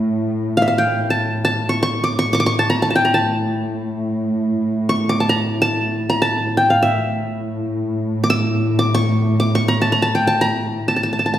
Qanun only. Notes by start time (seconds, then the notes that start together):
Already playing: A5
0.57 F5
0.62 E5
0.68 F5
0.78 G5
1.10 A5
1.45 A5
1.69 C#6
1.83 C#6
2.04 D6
2.19 C#6
2.33 C#6 D6
2.40 D6
2.46 C#6
2.59 A5
2.70 A#5
2.82 A5
2.90 A5
2.95 G5
3.05 A#5
3.14 A5
4.89 C#6
5.09 D6
5.20 A5
5.29 A#5
5.62 A5
6.10 A#5
6.22 A5
6.57 G5
6.70 F5
6.82 E5
8.24 D6
8.30 E6
8.79 D6
8.94 C#6
9.40 D6
9.55 C#6
9.68 A#5
9.82 A5
9.92 A#5
10.02 A5
10.15 G5
10.27 A5
10.41 A#5
10.88 A5
10.96 A5
11.03 A5
11.13 A5
11.19 A5
11.26 A5
11.34 A5